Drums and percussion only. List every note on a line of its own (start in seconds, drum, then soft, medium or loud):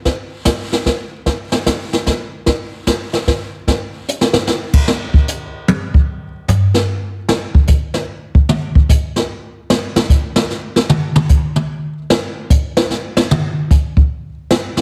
0.05 brush sweep soft
0.05 kick soft
0.05 snare soft
0.45 kick soft
0.45 snare medium
0.45 hi-hat pedal medium
0.72 snare soft
0.86 kick soft
0.86 snare soft
1.26 brush sweep soft
1.26 kick soft
1.26 snare soft
1.52 snare medium
1.66 kick soft
1.66 snare medium
1.66 hi-hat pedal soft
1.93 snare soft
2.06 kick soft
2.06 snare soft
2.46 brush sweep medium
2.46 kick soft
2.46 snare soft
2.87 kick soft
2.87 snare medium
2.87 hi-hat pedal soft
3.13 snare soft
3.27 kick soft
3.27 snare soft
3.67 brush sweep soft
3.67 kick soft
3.67 snare soft
4.08 hi-hat pedal medium
4.21 snare medium
4.33 snare medium
4.47 snare medium
4.73 kick medium
4.73 crash medium
4.88 snare medium
5.14 kick medium
5.28 hi-hat pedal medium
5.68 high tom medium
5.94 kick medium
6.48 floor tom medium
6.48 hi-hat pedal soft
6.74 snare soft
7.28 snare medium
7.55 kick medium
7.67 kick medium
7.67 hi-hat pedal soft
7.94 snare soft
8.35 kick medium
8.49 mid tom medium
8.75 kick medium
8.89 kick medium
8.89 hi-hat pedal medium
9.16 snare soft
9.70 snare loud
9.96 snare medium
10.10 kick medium
10.10 hi-hat pedal soft
10.36 snare loud
10.50 snare soft
10.76 snare soft
10.89 mid tom medium
11.16 mid tom medium
11.29 kick medium
11.29 hi-hat pedal medium
11.56 mid tom soft
12.10 snare medium
12.50 kick medium
12.50 hi-hat pedal medium
12.77 snare loud
12.90 snare soft
13.17 snare loud
13.31 mid tom medium
13.71 kick medium
13.71 hi-hat pedal medium
13.97 kick medium
14.51 snare medium
14.77 snare medium